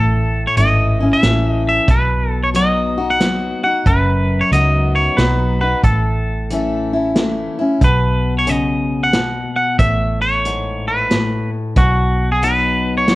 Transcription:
Already playing: A1 A2 A4
0.47 C#5
0.57 G#1 E3 A3 C#4 E4 D#5, closed hi-hat
1.00 C#4 E4
1.13 E5
1.23 A1 E3 A3 C#4 E4, snare, closed hi-hat
1.50 D#5
1.69 E5
1.88 B1 B2 B4, kick, closed hi-hat
2.44 C#5
2.54 F#3 B3 D#4 F#4 D#5, closed hi-hat
2.97 D#4 F#4
3.10 F#5
3.19 F#3 B3 D#4 F#4, snare, closed hi-hat
3.63 D#4 F#4 F#5
3.86 F#1 F#2 B4, kick, closed hi-hat
4.41 C#5
4.51 C#2 F#3 B3 D#4 F#4 D#5, closed hi-hat
4.95 C#5
5.17 B1 F#3 B3 D#4 F#4 B4, snare, closed hi-hat
5.61 D#4 F#4 B4
5.84 A1 A2 A4, kick, closed hi-hat
6.50 E3 A3 C#4 E4, closed hi-hat
6.93 C#4 E4
7.15 E3 A3 C#4 E4, snare, closed hi-hat
7.59 C#4 E4
7.81 B1 B2 B4, kick, closed hi-hat
8.39 C#5
8.47 C#3 D#5, closed hi-hat
9.04 F#5
9.13 B2, snare, closed hi-hat
9.56 F#5
9.79 A1 A2 E5, kick, closed hi-hat
10.21 C#5
10.45 G#2, closed hi-hat
10.88 B4
11.11 A2, snare, closed hi-hat
11.76 B1 B2 F#4, kick, closed hi-hat
12.32 G#4
12.42 F#3 B3 D#4 F#4 B4, closed hi-hat
12.98 C#5
13.08 F#3 B3 D#4 F#4, snare, closed hi-hat

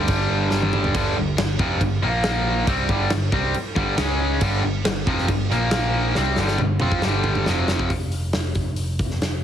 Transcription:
Already playing: G2 D3 G3
0.08 G1, kick, crash
0.29 G1
0.51 G1, snare
0.62 high tom
0.73 G2 D3 G3, mid tom
0.84 floor tom
0.94 G1 G2 D3 G3, kick, crash
1.17 G1 G2 D3
1.37 G1 G2 D3, snare, crash
1.59 F1 F2 C3 F3, kick
1.81 G1 G2 D3, kick, crash
2.02 A#1 A#2 F3 A#3
2.24 snare, crash
2.67 C2 C3 G3 C4, kick, crash
2.89 G1 G2 D3 G3, kick
3.10 G1 G2 D3, snare, crash
3.32 C2 C3 G3 C4, kick
3.54 muted overdriven electric guitar stroke, muted distorted electric guitar stroke, muted picked electric bass stroke, crash
3.76 G1 G2 D3 G3, kick
3.98 C#2 C#3 G#3 C#4, snare, crash
4.41 G1 G2 D3 G3, kick, crash
4.64 G1 G2 D3
4.84 G1 G2 D3, snare, crash
5.06 F1 F2 C3 F3, kick
5.18 snare
5.28 G1 G2 D3, kick, crash
5.50 A#1 A#2 F3 A#3, snare
5.71 snare, crash
6.15 C2 C3 G3 C4, snare
6.36 G1 G2 D3 G3, snare
6.48 snare
6.58 G1 G2 D3, mid tom
6.80 F2 F3 C4 F4, mid tom
6.92 kick
7.02 G1 G2 D3 G3, snare
7.24 mid tom
7.35 mid tom
7.46 F1 F2 C3 F3, snare
7.68 snare
7.79 kick
7.90 F1, kick, open hi-hat
8.12 F1, open hi-hat
8.33 F1, snare, open hi-hat
8.55 F1, kick, open hi-hat
8.76 F1, open hi-hat
8.99 kick, open hi-hat
9.11 snare
9.20 F1, snare, open hi-hat

